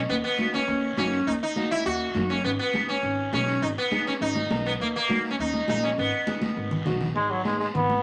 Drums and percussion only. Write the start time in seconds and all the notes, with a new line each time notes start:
0.09 long guiro
0.38 high conga, short guiro
0.53 short guiro
0.68 long guiro
0.97 high conga, short guiro
1.12 short guiro
1.27 long guiro
1.56 high conga, short guiro
1.71 short guiro
1.85 long guiro
2.15 high conga, short guiro
2.29 short guiro
2.44 long guiro
2.74 high conga, short guiro
2.88 short guiro
3.04 long guiro
3.33 high conga, short guiro
3.47 short guiro
3.62 long guiro
3.92 high conga, short guiro
4.06 short guiro
4.21 long guiro
4.35 high conga
4.51 high conga, short guiro
4.65 short guiro
4.80 long guiro
5.09 high conga, short guiro
5.24 short guiro
5.39 long guiro
5.54 high conga
5.68 high conga, short guiro
5.83 short guiro
5.98 long guiro
6.27 high conga, short guiro
6.41 high conga, short guiro
6.56 long guiro
6.71 low conga
6.86 low conga, short guiro
7.00 low conga, short guiro
7.16 long guiro
7.45 high conga, short guiro
7.60 short guiro
7.75 low conga, long guiro
7.90 high conga